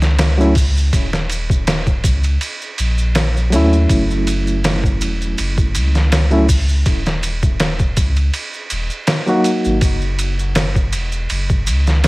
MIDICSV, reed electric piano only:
0, 0, Header, 1, 2, 480
1, 0, Start_track
1, 0, Tempo, 740741
1, 608, Time_signature, 4, 2, 24, 8
1, 7827, End_track
2, 0, Start_track
2, 0, Title_t, "Reed electric piano"
2, 0, Program_c, 0, 4
2, 243, Note_on_c, 0, 54, 87
2, 250, Note_on_c, 0, 57, 75
2, 255, Note_on_c, 0, 61, 77
2, 262, Note_on_c, 0, 64, 89
2, 340, Note_off_c, 0, 54, 0
2, 343, Note_off_c, 0, 57, 0
2, 346, Note_off_c, 0, 61, 0
2, 349, Note_off_c, 0, 64, 0
2, 2269, Note_on_c, 0, 54, 79
2, 2283, Note_on_c, 0, 57, 79
2, 2292, Note_on_c, 0, 61, 78
2, 2304, Note_on_c, 0, 64, 93
2, 4056, Note_off_c, 0, 54, 0
2, 4063, Note_off_c, 0, 57, 0
2, 4068, Note_off_c, 0, 61, 0
2, 4073, Note_off_c, 0, 64, 0
2, 4086, Note_on_c, 0, 54, 80
2, 4091, Note_on_c, 0, 57, 76
2, 4098, Note_on_c, 0, 61, 76
2, 4101, Note_on_c, 0, 64, 92
2, 4181, Note_off_c, 0, 54, 0
2, 4184, Note_off_c, 0, 57, 0
2, 4187, Note_off_c, 0, 61, 0
2, 4189, Note_off_c, 0, 64, 0
2, 6002, Note_on_c, 0, 54, 80
2, 6008, Note_on_c, 0, 58, 78
2, 6016, Note_on_c, 0, 63, 79
2, 6020, Note_on_c, 0, 66, 93
2, 6347, Note_off_c, 0, 54, 0
2, 6350, Note_off_c, 0, 58, 0
2, 6354, Note_off_c, 0, 63, 0
2, 6356, Note_off_c, 0, 66, 0
2, 7827, End_track
0, 0, End_of_file